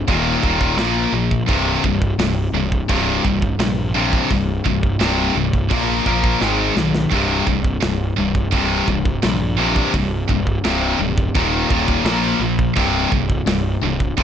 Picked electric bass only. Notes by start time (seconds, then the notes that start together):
0.08 D#1
0.43 D#1
0.77 A#1
1.13 A#1
1.49 C1
1.84 C1
2.18 C1
2.52 C1
2.89 C1
3.25 C1
3.59 A#1
4.31 C1
4.66 C1
5.00 C1
5.35 C1
5.71 A#1
6.06 A#1
6.42 G#1
6.77 B1
7.12 C1
7.47 C1
7.83 C1
8.18 C1
8.52 C1
8.88 C1
9.24 A#1
9.94 C1
10.29 C1
10.65 C1
10.99 D1
11.35 D#1
11.70 D#1
12.05 A#1
12.40 A#1
12.77 C1
13.12 C1
13.46 C1
13.82 C1
14.18 C1